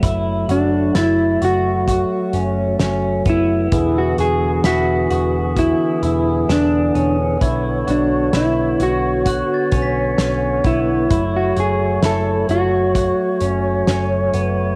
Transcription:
<<
  \new Staff \with { instrumentName = "Glockenspiel" } { \time 4/4 \key fis \minor \tempo 4 = 65 <e''' gis''' a'''>4 a'''2.~ | a'''8 r8 b'''2.~ | b'''8 r4. fis'''16 a'''16 b'''4.~ | b'''4 r2. | }
  \new Staff \with { instrumentName = "Clean electric guitar" } { \time 4/4 \key fis \minor r8 d'8 e'8 fis'2 e'8~ | e'16 fis'16 gis'8 fis'4 e'4 d'8. r16 | r8 d'8 e'8 fis'2 e'8~ | e'16 fis'16 gis'8 a'8 fis'2 r8 | }
  \new Staff \with { instrumentName = "Clean electric guitar" } { \time 4/4 \key fis \minor e'8 fis'8 e'8 fis'8 fis'8 cis'8 cis'8 b8 | e'8 fis'8 e'8 fis'8 fis'8 e'8 d'8 cis'8 | e'8 fis'8 e'8 fis'8 fis'8 cis'8 cis'8 b8 | e'8 fis'8 e'8 fis'8 fis'8 cis'8 cis'8 b8 | }
  \new Staff \with { instrumentName = "Tonewheel organ" } { \time 4/4 \key fis \minor a1 | <e gis'>1 | cis''1~ | cis''1 | }
  \new Staff \with { instrumentName = "Tonewheel organ" } { \clef bass \time 4/4 \key fis \minor fis1 | <d b>1 | d1 | <fis a>1 | }
  \new Staff \with { instrumentName = "Picked electric bass" } { \clef bass \time 4/4 \key fis \minor fis,,8 fis,,8 fis,,8 fis,,8. r16 fis,,8 fis,,8 fis,,8 | e,,8 e,,8 e,,8 e,,8. r16 e,,8 e,,8 e,,8 | b,,8 b,,8 b,,8 b,,8. r16 b,,8 b,,8 b,,8 | fis,,8 fis,,8 fis,,8 fis,,8. r16 fis,,8 fis,,8 fis,,8 | }
  \new DrumStaff \with { instrumentName = "Drums" } \drummode { \time 4/4 <hh bd>8 hh8 <hh sn>8 hh8 <hh bd>8 hh8 <hh sn>8 <hh bd>8 | <hh bd>8 hh8 <hh sn>8 hh8 <hh bd>8 hh8 <hh sn>8 hh8 | <hh bd>8 hh8 <hh sn>8 hh8 <hh bd>8 <hh bd>8 <hh sn>8 <hh bd>8 | <hh bd>8 hh8 <hh sn>8 hh8 <hh bd>8 hh8 <hh sn>8 hh8 | }
>>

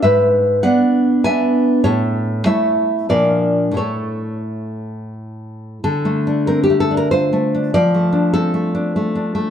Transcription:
\new Staff \with { instrumentName = "Nylon-string guitar" } { \time 3/4 \key d \minor \tempo 4 = 96 << { <b' e''>4 <d'' fis''>4 <e'' gis''>4 | <a' cis''>4 <cis'' e''>4 <bes' d''>4 | <a' cis''>2 r4 | a'4 bes'16 g'16 a'16 bes'16 c''4 |
d''4 a'2 | } \\ { gis,4 <b d'>4 <b d'>4 | a,4 <a e'>4 <bes, f d'>4 | <a, a e'>2. | \tuplet 3/2 { d8 a8 d'8 c'8 a8 d'8 f'8 a8 d'8 } |
\tuplet 3/2 { f8 a8 d'8 c'8 a8 d'8 a8 d'8 a8 } | } >> }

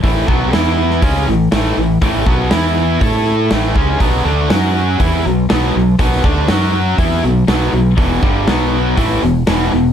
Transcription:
<<
  \new Staff \with { instrumentName = "Distorted electric guitar" } { \clef bass \time 4/4 \key a \lydian \tempo 4 = 121 <a, e a>8 <b, fis b>8 <e b e'>4 <cis gis cis'>8 <a, e>8 <a, e a>8 <a, e>8 | <a, e a>8 <b, fis b>8 <e b e'>4 <a e' a'>4 <a, e a>8 <cis gis cis'>8 | <b, fis b>8 <d a d'>8 <fis cis' fis'>4 <e b e'>8 <b, fis>8 <b, fis b>8 <b, fis>8 | <b, fis b>8 <d a d'>8 <fis cis' fis'>4 <e b e'>8 <b, fis>8 <b, fis b>8 <b, fis>8 |
<e, b, e>8 <g, d g>8 <b, fis b>4 <a, e a>8 <e, b,>8 <e, b, e>8 <e, b,>8 | }
  \new Staff \with { instrumentName = "Distorted electric guitar" } { \clef bass \time 4/4 \key a \lydian <a, e a>8 <b, fis b>8 <e b e'>4 <cis gis cis'>8 <a, e>8 <a, e a>8 <a, e>8 | <a, e a>8 <b, fis b>8 <e b e'>4 <a e' a'>4 <a, e a>8 <cis gis cis'>8 | <b, fis b>8 <d a d'>8 <fis cis' fis'>4 <e b e'>8 <b, fis>8 <b, fis b>8 <b, fis>8 | <b, fis b>8 <d a d'>8 <fis cis' fis'>4 <e b e'>8 <b, fis>8 <b, fis b>8 <b, fis>8 |
<e, b, e>8 <g, d g>8 <b, fis b>4 <a, e a>8 <e, b,>8 <e, b, e>8 <e, b,>8 | }
  \new Staff \with { instrumentName = "Fretless electric bass" } { \clef bass \time 4/4 \key a \lydian a,,8 b,,8 e,4 cis,8 a,,8 a,,8 a,,8 | a,,8 b,,8 e,4 a,4 a,,8 cis,8 | b,,8 d,8 fis,4 e,8 b,,8 b,,8 b,,8 | b,,8 d,8 fis,4 e,8 b,,8 b,,8 b,,8 |
e,,8 g,,8 b,,4 a,,8 e,,8 e,,8 e,,8 | }
  \new DrumStaff \with { instrumentName = "Drums" } \drummode { \time 4/4 <hho bd>8 bd8 <hho sn>8. sn16 <hho bd>4 <hho sn>16 sn8. | <hho bd>8 bd8 <hho sn>4 <hho bd>4 <hho sn>16 sn16 bd8 | <hho bd>4 <hho sn>4 <hho bd>4 <hho sn>16 sn8. | <hho bd>8 bd8 <hho sn>4 <hho bd>4 <hho sn>4 |
<hho bd>8 bd8 <hho sn>4 <hho bd>4 <hho sn>16 sn8. | }
>>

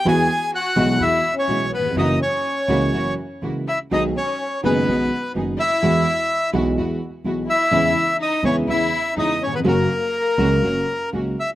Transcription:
<<
  \new Staff \with { instrumentName = "Bandoneon" } { \time 4/4 \key fis \mixolydian \tempo 4 = 125 gis''4 fis''4 e''8. cis''8. b'8 | dis''8 cis''2 r4 e''8 | dis''8 cis''4 b'4. r8 e''8~ | e''4. r2 e''8~ |
e''4 dis''8 cis''8 e''4 dis''8 cis''16 b'16 | ais'2. r8 e''8 | }
  \new Staff \with { instrumentName = "String section" } { \time 4/4 \key fis \mixolydian <gis e' fis'>8 r4 <gis e' fis'>8 <gis e' fis'>8 r8 <gis e' fis'>8 r8 | <ais e' fis'>8 r4 <ais e' fis'>8 <ais e' fis'>8 r8 <ais e' fis'>8 r8 | <b dis' gis'>8 r4 <b dis' gis'>8 <b dis' gis'>8 r8 <b dis' gis'>8 r8 | <gis e' fis'>8 r4 <gis e' fis'>8 <gis e' fis'>8 r8 <gis e' fis'>8 r8 |
<b cis' e'>8 r4 <b cis' e'>8 <b cis' e'>8 r8 <b cis' e'>8 r8 | <ais cis' fis'>8 r4 <ais cis' fis'>8 <ais cis' fis'>8 r8 <ais cis' fis'>8 r8 | }
  \new Staff \with { instrumentName = "Violin section" } { \time 4/4 \key fis \mixolydian gis'4 fis'4 e'8. cis'8. b8 | dis'8 cis'2 r4 e'8 | dis'8 cis'4 b4. r8 e'8~ | e'4. r2 e'8~ |
e'4 dis'8 cis'8 e'4 dis'8 cis'16 b16 | ais2. r4 | }
  \new Staff \with { instrumentName = "Grand piano" } { \clef bass \time 4/4 \key fis \mixolydian <e, e gis b fis'>8 r4 <b,, b, e gis b fis'>8 <e, e gis b fis'>8 r8 <b,, b, e gis b fis'>8 r32 dis,32 e,32 eis,32 | <fis, e fis ais cis' fis'>8 r4 <cis, cis e ais cis' fis'>8 <fis, e fis ais fis'>8 r8 <cis, cis e ais cis' fis'>8 r8 | <b,, b, dis gis b fis'>8 r4 <fis,, fis, dis gis b fis'>8 <b,, b, dis gis b fis'>8 r8 <fis,, fis, dis gis b fis'>8 r8 | <e, e gis b fis'>8 r4 <b,, b, e gis b fis'>8 <e, e gis b fis'>8 r8 <b,, b, e gis b fis'>8 r8 |
<e, cis e gis b e'>8 r4 <e, cis e gis b e'>8 <e, cis e gis>8 r8 <e, cis e gis b e'>8 r32 dis,32 e,32 eis,32 | <fis, cis fis ais fis'>8 r4 <cis, cis fis ais fis'>8 <fis, cis fis ais fis'>8 r8 <cis, cis fis ais fis'>8 r8 | }
  \new Staff \with { instrumentName = "Upright bass" } { \clef bass \time 4/4 \key fis \mixolydian e,8 r4 b,,8 e,8 r8 b,,8 r8 | fis,,8 r4 cis,8 fis,,8 r8 cis,8 r8 | b,,8 r4 fis,,8 b,,8 r8 fis,,8 r8 | e,8 r4 b,,8 e,8 r8 b,,8 r8 |
e,8 r4 e,8 e,8 r8 e,8 r8 | fis,,8 r4 cis,8 fis,,8 r8 cis,8 r8 | }
>>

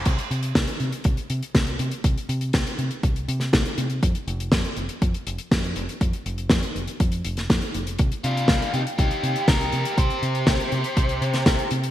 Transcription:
<<
  \new Staff \with { instrumentName = "Lead electric guitar" } { \time 4/4 \key c \minor \tempo 4 = 121 r1 | r1 | r1 | r1 |
r8 <d' f'>4 <ees' g'>8 <ees' g'>4 <g' bes'>4 | <g' c''>2.~ <g' c''>8 r8 | }
  \new Staff \with { instrumentName = "Fingered electric bass" } { \clef bass \time 4/4 \key c \minor c,8 c8 c,8 c8 c,8 c8 c,8 c8 | c,8 c8 c,8 c8 c,8 c8 c,8 c8 | f,8 f,,8 f,8 f,,8 f,8 f,,8 f,8 f,,8 | f,8 f,,8 f,8 f,,8 f,8 f,,8 f,8 f,,8 |
c,8 c8 c,8 c8 c,8 c8 c,8 c8 | c,8 c8 c,8 c8 c,8 c8 c,8 c8 | }
  \new DrumStaff \with { instrumentName = "Drums" } \drummode { \time 4/4 <cymc hh bd>16 hh16 hh16 hh16 <hh bd sn>16 hh16 hh16 hh16 <hh bd>16 hh16 hh16 hh16 <hh bd sn>16 hh16 hh16 hh16 | <hh bd>16 hh16 hh16 hh16 <hh bd sn>16 hh16 hh16 hh16 <hh bd>16 hh16 hh16 <hh sn>16 <hh bd sn>16 hh16 hh16 hh16 | <hh bd>16 hh16 hh16 hh16 <hh bd sn>16 hh16 hh16 hh16 <hh bd>16 hh16 hh16 hh16 <hh bd sn>16 hh16 hh16 hh16 | <hh bd>16 hh16 hh16 hh16 <hh bd sn>16 hh16 hh16 hh16 <hh bd>16 hh16 hh16 <hh sn>16 <hh bd sn>16 hh16 hh16 hh16 |
<hh bd>16 hh16 hh16 hh16 <hh bd sn>16 hh16 hh16 hh16 <hh bd>16 hh16 hh16 hh16 <hh bd sn>16 hh16 hh16 hh16 | <hh bd>16 hh16 hh16 hh16 <hh bd sn>16 hh16 hh16 hh16 <hh bd>16 hh16 hh16 <hh sn>16 <hh bd sn>16 hh16 hh16 hh16 | }
>>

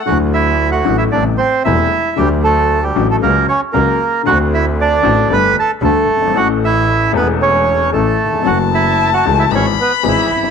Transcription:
<<
  \new Staff \with { instrumentName = "Violin" } { \time 4/4 \key d \major \tempo 4 = 114 r1 | r1 | r1 | r1 |
a''2 b''2 | }
  \new Staff \with { instrumentName = "Bandoneon" } { \time 4/4 \key d \major <fis' fis''>8 <e' e''>8. <fis' fis''>8 <e' e''>16 <d' d''>8 <c' c''>8 <e' e''>4 | <g g'>8 <a a'>8. <g g'>8 <a a'>16 <ais ais'>8 <cis' cis''>8 <ais ais'>4 | <fis' fis''>8 <e' e''>8 <d' d''>4 <b' b''>8 <a' a''>8 <a a'>4 | <fis' fis''>8 <e' e''>4 <b b'>8 <cis' cis''>4 <a a'>4 |
<fis' fis''>8 <e' e''>8. <fis' fis''>8 <e' e''>16 <cis' cis''>8 <b b'>8 <e' e''>4 | }
  \new Staff \with { instrumentName = "Upright piano" } { \clef bass \time 4/4 \key d \major <d, d fis a e'>4. <a,, a, d fis a e'>8 <a,, a, c g a e'>8 r8 <e,, e, c g a e'>8 r8 | <d, d fis a fis'>4. <a,, a, d fis a fis'>8 <cis, cis fis ais fis'>8 r8 <cis, cis fis ais fis'>8 r8 | <d, d a c' fis'>4. <a,, a, d a c' fis'>8 <g,, g, g a d' a'>8 r8 <d, d g a d' a'>8 r32 fis,,32 g,,32 gis,,32 | <a,, a, e a cis' a'>4. <e,, e, e a cis' a'>4. <a,, a, e a cis' a'>8 r32 ees,32 e,32 f,32 |
<fis, e fis a cis' fis'>4. <cis, cis e a cis' fis'>8 <gis,, gis, e gis b gis'>8 r8 <gis,, gis, e gis b gis'>8 r32 fis,,32 g,,32 r32 | }
  \new Staff \with { instrumentName = "Double bass" } { \clef bass \time 4/4 \key d \major d,4. a,,8 a,,8 r8 e,,8 r8 | d,4. a,,8 cis,8 r8 cis,8 r8 | d,4. a,,8 g,,8 r8 d,8 g,,8 | a,,4. e,,4. a,,8 r8 |
fis,,4. cis,8 gis,,8 r8 gis,,8 g,,8 | }
>>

